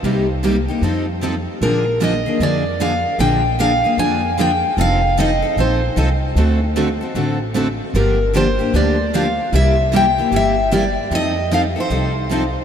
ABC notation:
X:1
M:4/4
L:1/8
Q:"Swing" 1/4=152
K:Fmix
V:1 name="Steel-string acoustic guitar"
z8 | B2 e2 d2 f2 | g2 f2 _a2 g2 | f2 e2 c2 z2 |
z8 | B2 c2 d2 f2 | =e2 g2 e2 d2 | e2 f c4- c |]
V:2 name="Steel-string acoustic guitar"
[C,G,B,EG] z [C,G,B,EG] [B,EG] [F,CEA] z [F,CEA] z | [D,F,B,D_A] z [D,F,B,DA] [B,DA] [D,F,B,DA] z [D,F,B,DA] z | [D,F,B,D_A] z [D,F,B,DA] [B,DA] [D,F,B,DA] z [D,F,B,DA] z | [F,CEA] z [F,CEA] [CEA] [F,CEA] z [F,CEA] z |
[D,A,C^FA] z [D,A,CFA] [CFA] [D,A,CFA] z [D,A,CFA] z | [D,F,B,DG] z [D,F,B,DG] [B,DG] [D,F,B,DG] z [D,F,B,DG] z | [C,G,B,=EG] z [C,G,B,EG] [B,EG] [C,G,B,EG] z [C,G,B,EG] z | [F,CEA] z [F,CEA] [CEA] [F,CEA] z [F,CEA] z |]
V:3 name="Steel-string acoustic guitar"
[C,G,B,EG] z [C,G,B,EG] z [F,CEA] z [F,CEA] z | [D,F,B,D_A] z [D,F,B,DA] z [D,F,B,DA] z [D,F,B,DA] z | [D,F,B,D_A] z [D,F,B,DA] z [D,F,B,DA] z [D,F,B,DA] z | [F,CEA] z [F,CEA] z [F,CEA] z [F,CEA] z |
[D,A,C^FA] z [D,A,CFA] z [D,A,CFA] z [D,A,CFA] z | [D,F,B,DG] z [D,F,B,DG] z [D,F,B,DG] z [D,F,B,DG] z | [C,G,B,=EG] z [C,G,B,EG] z [C,G,B,EG] z [C,G,B,EG] z | [F,CEA] z [F,CEA] z [F,CEA] z [F,CEA] z |]
V:4 name="Upright bass" clef=bass
C,,4 F,,4 | B,,,4 F,,4 | B,,,4 F,,4 | F,,,4 B,,,2 C,,2 |
D,,4 A,,,4 | G,,,4 D,,4 | C,,4 G,,,4 | F,,4 C,,4 |]